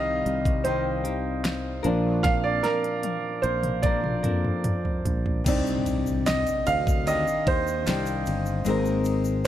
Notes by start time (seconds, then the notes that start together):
Already playing: C2 C3 D#3 G3 C4 D#4 G4 D#5 F5
0.26 C2, closed hi-hat
0.45 kick, closed hi-hat
0.64 D#3 C4 D#4 G4 C5, closed hi-hat
1.04 C4 D#4 G4, closed hi-hat
1.44 snare, closed hi-hat
1.83 A#1 F3 A#3 D4 A#4, closed hi-hat
1.88 A#2
2.23 F5, kick, snare, closed hi-hat
2.44 D5
2.63 A#4, snare, closed hi-hat
2.84 closed hi-hat
3.03 closed hi-hat, high tom
3.42 A#1 C5, closed hi-hat
3.63 closed hi-hat, mid tom
3.82 F3 A#3 D4 A#4 D5, kick, closed hi-hat
4.04 mid tom
4.23 F2 A#3 D4 A#4, closed hi-hat, mid tom
4.45 mid tom
4.64 closed hi-hat, mid tom
4.85 floor tom
5.05 A#1, closed hi-hat, floor tom
5.26 floor tom
5.44 C2 C3 C4 D#4 D5, kick, crash, ride, impact, shaker
5.49 D4 G4
5.67 shaker
5.86 ride, shaker
6.06 shaker
6.26 D#5, snare, ride, shaker
6.47 ride, shaker
6.67 D2 F5, ride, shaker
6.87 kick, shaker
7.06 D#3 C4 D4 G4 D#5, ride, shaker
7.27 shaker
7.47 D#2 C5, kick, ride
7.67 shaker
7.86 C2 D#3 C4 D4 G4, snare, ride, shaker
8.06 ride, shaker
8.26 G1, ride, shaker
8.46 shaker
8.65 G#1 G#3 A#3 C4 D#4, ride, shaker
8.70 A#4
8.85 shaker
9.04 ride, shaker
9.24 shaker